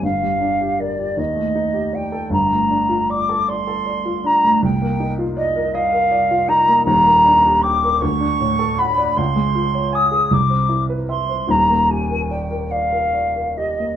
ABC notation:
X:1
M:6/8
L:1/16
Q:3/8=52
K:Eb
V:1 name="Flute"
f4 d2 e4 g2 | b4 d'2 c'4 b2 | g4 e2 f4 b2 | b4 d'2 ^c'4 _c'2 |
c'4 e'2 d'4 c'2 | b2 a2 g2 f4 e2 |]
V:2 name="Grand piano"
[G,,,G,,] G, D G B G E,, =A, E G d =A | [G,,,G,,] =A, D F d =A d A d F D A, | C,, B, E F d B e B d F E B, | [E,,,E,,] B, D G g B D,, D =A,, =A ^f d |
_D,, A, F _d a A C,, C =E =B =e c | [E,,,E,,] B, G B d B d B d B G B, |]